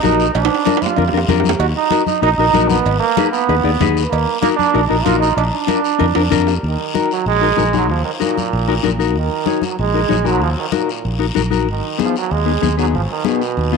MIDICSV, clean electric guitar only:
0, 0, Header, 1, 2, 480
1, 0, Start_track
1, 0, Key_signature, -6, "minor"
1, 0, Tempo, 314630
1, 526, Time_signature, 4, 2, 24, 8
1, 10113, Key_signature, -6, "minor"
1, 21008, End_track
2, 0, Start_track
2, 0, Title_t, "Clean electric guitar"
2, 0, Program_c, 0, 27
2, 51, Note_on_c, 0, 63, 72
2, 59, Note_on_c, 0, 66, 69
2, 70, Note_on_c, 0, 70, 83
2, 385, Note_off_c, 0, 63, 0
2, 389, Note_off_c, 0, 66, 0
2, 395, Note_off_c, 0, 70, 0
2, 1000, Note_on_c, 0, 62, 72
2, 1010, Note_on_c, 0, 65, 56
2, 1018, Note_on_c, 0, 70, 79
2, 1171, Note_off_c, 0, 62, 0
2, 1176, Note_off_c, 0, 65, 0
2, 1180, Note_off_c, 0, 70, 0
2, 1478, Note_on_c, 0, 62, 64
2, 1487, Note_on_c, 0, 65, 69
2, 1495, Note_on_c, 0, 70, 80
2, 1566, Note_off_c, 0, 62, 0
2, 1570, Note_off_c, 0, 65, 0
2, 1572, Note_off_c, 0, 70, 0
2, 1722, Note_on_c, 0, 62, 62
2, 1730, Note_on_c, 0, 65, 60
2, 1739, Note_on_c, 0, 70, 76
2, 1808, Note_off_c, 0, 62, 0
2, 1810, Note_off_c, 0, 65, 0
2, 1816, Note_off_c, 0, 70, 0
2, 1961, Note_on_c, 0, 62, 88
2, 1974, Note_on_c, 0, 65, 87
2, 1974, Note_on_c, 0, 70, 102
2, 2300, Note_off_c, 0, 62, 0
2, 2302, Note_off_c, 0, 65, 0
2, 2305, Note_off_c, 0, 70, 0
2, 2914, Note_on_c, 0, 63, 70
2, 2926, Note_on_c, 0, 66, 66
2, 2927, Note_on_c, 0, 70, 72
2, 3087, Note_off_c, 0, 63, 0
2, 3090, Note_off_c, 0, 66, 0
2, 3093, Note_off_c, 0, 70, 0
2, 3388, Note_on_c, 0, 63, 72
2, 3398, Note_on_c, 0, 70, 70
2, 3399, Note_on_c, 0, 66, 59
2, 3479, Note_off_c, 0, 63, 0
2, 3482, Note_off_c, 0, 66, 0
2, 3484, Note_off_c, 0, 70, 0
2, 3648, Note_on_c, 0, 63, 67
2, 3653, Note_on_c, 0, 66, 62
2, 3658, Note_on_c, 0, 70, 74
2, 3729, Note_off_c, 0, 63, 0
2, 3730, Note_off_c, 0, 66, 0
2, 3734, Note_off_c, 0, 70, 0
2, 3869, Note_on_c, 0, 63, 71
2, 3875, Note_on_c, 0, 66, 72
2, 3885, Note_on_c, 0, 70, 84
2, 4211, Note_off_c, 0, 63, 0
2, 4214, Note_off_c, 0, 66, 0
2, 4219, Note_off_c, 0, 70, 0
2, 4843, Note_on_c, 0, 63, 79
2, 4846, Note_on_c, 0, 68, 64
2, 4858, Note_on_c, 0, 71, 74
2, 5009, Note_off_c, 0, 68, 0
2, 5010, Note_off_c, 0, 63, 0
2, 5017, Note_off_c, 0, 71, 0
2, 5317, Note_on_c, 0, 63, 62
2, 5327, Note_on_c, 0, 68, 65
2, 5328, Note_on_c, 0, 71, 80
2, 5403, Note_off_c, 0, 63, 0
2, 5404, Note_off_c, 0, 68, 0
2, 5408, Note_off_c, 0, 71, 0
2, 5549, Note_on_c, 0, 63, 65
2, 5559, Note_on_c, 0, 68, 61
2, 5562, Note_on_c, 0, 74, 76
2, 5639, Note_off_c, 0, 63, 0
2, 5642, Note_off_c, 0, 74, 0
2, 5643, Note_off_c, 0, 68, 0
2, 5805, Note_on_c, 0, 63, 90
2, 5815, Note_on_c, 0, 68, 79
2, 5824, Note_on_c, 0, 71, 102
2, 6137, Note_off_c, 0, 63, 0
2, 6143, Note_off_c, 0, 68, 0
2, 6145, Note_off_c, 0, 71, 0
2, 6753, Note_on_c, 0, 63, 76
2, 6762, Note_on_c, 0, 66, 59
2, 6770, Note_on_c, 0, 70, 84
2, 6923, Note_off_c, 0, 63, 0
2, 6927, Note_off_c, 0, 66, 0
2, 6931, Note_off_c, 0, 70, 0
2, 7228, Note_on_c, 0, 63, 76
2, 7237, Note_on_c, 0, 66, 61
2, 7241, Note_on_c, 0, 70, 81
2, 7316, Note_off_c, 0, 63, 0
2, 7321, Note_off_c, 0, 66, 0
2, 7321, Note_off_c, 0, 70, 0
2, 7468, Note_on_c, 0, 63, 71
2, 7475, Note_on_c, 0, 66, 65
2, 7479, Note_on_c, 0, 70, 74
2, 7557, Note_off_c, 0, 63, 0
2, 7558, Note_off_c, 0, 66, 0
2, 7559, Note_off_c, 0, 70, 0
2, 7717, Note_on_c, 0, 63, 74
2, 7727, Note_on_c, 0, 66, 64
2, 7727, Note_on_c, 0, 70, 77
2, 8053, Note_off_c, 0, 63, 0
2, 8054, Note_off_c, 0, 66, 0
2, 8057, Note_off_c, 0, 70, 0
2, 8652, Note_on_c, 0, 62, 75
2, 8664, Note_on_c, 0, 65, 65
2, 8673, Note_on_c, 0, 70, 78
2, 8832, Note_off_c, 0, 62, 0
2, 8835, Note_off_c, 0, 65, 0
2, 8841, Note_off_c, 0, 70, 0
2, 9133, Note_on_c, 0, 62, 83
2, 9140, Note_on_c, 0, 65, 77
2, 9144, Note_on_c, 0, 70, 91
2, 9228, Note_off_c, 0, 62, 0
2, 9230, Note_off_c, 0, 65, 0
2, 9233, Note_off_c, 0, 70, 0
2, 9385, Note_on_c, 0, 62, 76
2, 9389, Note_on_c, 0, 65, 68
2, 9398, Note_on_c, 0, 70, 87
2, 9474, Note_off_c, 0, 62, 0
2, 9474, Note_off_c, 0, 65, 0
2, 9480, Note_off_c, 0, 70, 0
2, 9619, Note_on_c, 0, 62, 92
2, 9626, Note_on_c, 0, 65, 76
2, 9635, Note_on_c, 0, 70, 100
2, 9962, Note_off_c, 0, 62, 0
2, 9966, Note_off_c, 0, 65, 0
2, 9970, Note_off_c, 0, 70, 0
2, 10590, Note_on_c, 0, 63, 65
2, 10598, Note_on_c, 0, 66, 53
2, 10603, Note_on_c, 0, 70, 71
2, 10845, Note_off_c, 0, 63, 0
2, 10847, Note_off_c, 0, 66, 0
2, 10848, Note_off_c, 0, 70, 0
2, 11307, Note_on_c, 0, 63, 64
2, 11316, Note_on_c, 0, 66, 51
2, 11326, Note_on_c, 0, 70, 67
2, 11396, Note_off_c, 0, 63, 0
2, 11397, Note_off_c, 0, 66, 0
2, 11399, Note_off_c, 0, 70, 0
2, 11544, Note_on_c, 0, 63, 64
2, 11552, Note_on_c, 0, 66, 65
2, 11562, Note_on_c, 0, 70, 70
2, 11633, Note_off_c, 0, 63, 0
2, 11638, Note_off_c, 0, 66, 0
2, 11640, Note_off_c, 0, 70, 0
2, 11797, Note_on_c, 0, 63, 61
2, 11804, Note_on_c, 0, 66, 50
2, 11813, Note_on_c, 0, 68, 56
2, 12048, Note_off_c, 0, 63, 0
2, 12053, Note_off_c, 0, 66, 0
2, 12053, Note_off_c, 0, 68, 0
2, 12507, Note_on_c, 0, 63, 64
2, 12511, Note_on_c, 0, 66, 57
2, 12520, Note_on_c, 0, 70, 71
2, 12763, Note_off_c, 0, 66, 0
2, 12764, Note_off_c, 0, 63, 0
2, 12769, Note_off_c, 0, 70, 0
2, 13243, Note_on_c, 0, 63, 73
2, 13251, Note_on_c, 0, 66, 65
2, 13252, Note_on_c, 0, 70, 81
2, 13324, Note_off_c, 0, 63, 0
2, 13326, Note_off_c, 0, 70, 0
2, 13327, Note_off_c, 0, 66, 0
2, 13472, Note_on_c, 0, 63, 83
2, 13483, Note_on_c, 0, 66, 66
2, 13494, Note_on_c, 0, 70, 97
2, 13558, Note_off_c, 0, 63, 0
2, 13565, Note_off_c, 0, 66, 0
2, 13567, Note_off_c, 0, 70, 0
2, 13714, Note_on_c, 0, 63, 65
2, 13726, Note_on_c, 0, 66, 65
2, 13727, Note_on_c, 0, 70, 77
2, 13967, Note_off_c, 0, 63, 0
2, 13971, Note_off_c, 0, 70, 0
2, 13974, Note_off_c, 0, 66, 0
2, 14439, Note_on_c, 0, 63, 68
2, 14447, Note_on_c, 0, 66, 59
2, 14454, Note_on_c, 0, 73, 69
2, 14690, Note_off_c, 0, 63, 0
2, 14694, Note_off_c, 0, 66, 0
2, 14697, Note_off_c, 0, 73, 0
2, 15167, Note_on_c, 0, 63, 55
2, 15171, Note_on_c, 0, 66, 54
2, 15176, Note_on_c, 0, 70, 68
2, 15246, Note_off_c, 0, 63, 0
2, 15246, Note_off_c, 0, 66, 0
2, 15250, Note_off_c, 0, 70, 0
2, 15390, Note_on_c, 0, 63, 75
2, 15405, Note_on_c, 0, 66, 59
2, 15408, Note_on_c, 0, 73, 79
2, 15478, Note_off_c, 0, 63, 0
2, 15485, Note_off_c, 0, 66, 0
2, 15485, Note_off_c, 0, 73, 0
2, 15627, Note_on_c, 0, 63, 51
2, 15634, Note_on_c, 0, 66, 52
2, 15637, Note_on_c, 0, 70, 61
2, 15885, Note_off_c, 0, 63, 0
2, 15886, Note_off_c, 0, 66, 0
2, 15889, Note_off_c, 0, 70, 0
2, 16350, Note_on_c, 0, 63, 58
2, 16355, Note_on_c, 0, 66, 63
2, 16358, Note_on_c, 0, 70, 71
2, 16607, Note_off_c, 0, 63, 0
2, 16607, Note_off_c, 0, 66, 0
2, 16610, Note_off_c, 0, 70, 0
2, 17074, Note_on_c, 0, 63, 73
2, 17081, Note_on_c, 0, 66, 65
2, 17088, Note_on_c, 0, 70, 70
2, 17161, Note_off_c, 0, 63, 0
2, 17162, Note_off_c, 0, 66, 0
2, 17167, Note_off_c, 0, 70, 0
2, 17313, Note_on_c, 0, 63, 78
2, 17319, Note_on_c, 0, 66, 68
2, 17325, Note_on_c, 0, 70, 86
2, 17400, Note_off_c, 0, 63, 0
2, 17403, Note_off_c, 0, 66, 0
2, 17405, Note_off_c, 0, 70, 0
2, 17550, Note_on_c, 0, 63, 71
2, 17557, Note_on_c, 0, 66, 65
2, 17566, Note_on_c, 0, 70, 78
2, 17795, Note_off_c, 0, 63, 0
2, 17797, Note_off_c, 0, 66, 0
2, 17802, Note_off_c, 0, 70, 0
2, 18281, Note_on_c, 0, 59, 68
2, 18287, Note_on_c, 0, 63, 60
2, 18295, Note_on_c, 0, 68, 74
2, 18532, Note_off_c, 0, 59, 0
2, 18535, Note_off_c, 0, 63, 0
2, 18540, Note_off_c, 0, 68, 0
2, 19004, Note_on_c, 0, 59, 67
2, 19010, Note_on_c, 0, 63, 50
2, 19019, Note_on_c, 0, 68, 61
2, 19087, Note_off_c, 0, 63, 0
2, 19088, Note_off_c, 0, 59, 0
2, 19089, Note_off_c, 0, 68, 0
2, 19247, Note_on_c, 0, 59, 67
2, 19250, Note_on_c, 0, 63, 60
2, 19259, Note_on_c, 0, 68, 78
2, 19328, Note_off_c, 0, 59, 0
2, 19329, Note_off_c, 0, 63, 0
2, 19334, Note_off_c, 0, 68, 0
2, 19488, Note_on_c, 0, 59, 61
2, 19498, Note_on_c, 0, 63, 54
2, 19510, Note_on_c, 0, 68, 64
2, 19736, Note_off_c, 0, 59, 0
2, 19741, Note_off_c, 0, 63, 0
2, 19748, Note_off_c, 0, 68, 0
2, 20206, Note_on_c, 0, 59, 68
2, 20211, Note_on_c, 0, 63, 60
2, 20218, Note_on_c, 0, 68, 71
2, 20457, Note_off_c, 0, 59, 0
2, 20457, Note_off_c, 0, 63, 0
2, 20462, Note_off_c, 0, 68, 0
2, 20935, Note_on_c, 0, 59, 70
2, 20946, Note_on_c, 0, 63, 65
2, 20949, Note_on_c, 0, 65, 82
2, 21008, Note_off_c, 0, 59, 0
2, 21008, Note_off_c, 0, 63, 0
2, 21008, Note_off_c, 0, 65, 0
2, 21008, End_track
0, 0, End_of_file